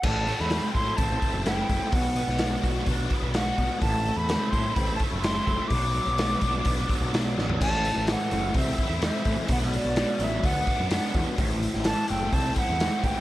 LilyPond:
<<
  \new Staff \with { instrumentName = "Flute" } { \time 4/4 \key a \dorian \tempo 4 = 127 a''8. b''8. c'''8 a''4 g''4 | fis''2 r4 fis''4 | a''8. b''8. c'''8 b''8 a''8 c'''4 | d'''2. r4 |
a''4 fis''4 e''4 e''4 | fis''8 d''4 e''8 fis''4 fis''8. r16 | r4 a''8 g''8 a''8 fis''4 g''8 | }
  \new Staff \with { instrumentName = "Tonewheel organ" } { \time 4/4 \key a \dorian <a e' c''>1 | <b fis' d''>1 | <c' a' e''>1 | <b fis' d''>1 |
<a e' c''>1 | <fis d' b'>1 | <a e' c''>1 | }
  \new Staff \with { instrumentName = "Overdriven electric guitar" } { \time 4/4 \key a \dorian a,8 a8 c'8 e'8 c'8 a8 e'8 a8 | b,8 b8 d'8 fis'8 d'8 b8 fis'8 b8 | a,8 a8 c'8 e'8 c'8 a8 e'8 a8 | b,8 fis8 b8 d'8 b8 fis8 d'8 fis8 |
a,4 e8 a8 c'8 e'8 c'8 e8 | b,4 b,8 fis8 b8 d'8 b8 b,8 | a,4 e8 a8 c'8 e'8 c'8 e8 | }
  \new Staff \with { instrumentName = "Picked electric bass" } { \clef bass \time 4/4 \key a \dorian a,,8. e,8 r16 a,8 a,,8 r16 fis,,8. fis,,16 r16 | b,,8. b,,8. b,,8 b,,8 r16 b,,8. b,,16 r16 | a,,8. e,8 r16 a,8 a,,8 r16 fis,,8. fis,,16 r16 | b,,8. b,,8. b,,8 b,,8 r16 b,,16 b,,8 a,,8 |
a,,8. a,,8 r16 fis,,8 c,8 r16 e,8 r16 a,16 r16 | b,,8. b,,8 r16 a,,8 d,8 r16 fis,8 r16 e,16 r16 | a,,8. a,,8 r16 fis,,8 c,8 r16 e,8 r16 a,,16 r16 | }
  \new DrumStaff \with { instrumentName = "Drums" } \drummode { \time 4/4 <cymc bd>8 hho16 sn16 <hho sn>8 <hho bd>8 <hho bd>8 <hho bd>8 <hho sn>8 <hho bd>8 | <hho bd>8 hho16 sn16 <hho sn>8 <hho bd>8 <hho bd>8 <hho bd>8 <hho sn>8 <hho bd>8 | <hho bd>8 hho8 <hho sn>8 <hho bd>8 <hho bd>8 <hho bd>8 <hho sn>8 <hho bd>8 | <hho bd>8 hho8 <hho sn>8 <hho bd>8 <hho bd>8 <hho bd>8 <hho sn>8 sn16 tomfh16 |
<cymc bd>8 hho8 <hho sn>8 hho8 <hho bd>8 <hho bd>8 <hho sn>8 <hho bd>8 | <hho bd>16 sn16 hho8 <hho sn>8 hho8 <hho bd>8 <hho bd>8 <hho sn>8 <hho bd>8 | <hho bd>8 hho16 sn16 <hho sn>8 hho8 <hho bd>8 <hho bd>8 <hho sn>8 <hho bd>8 | }
>>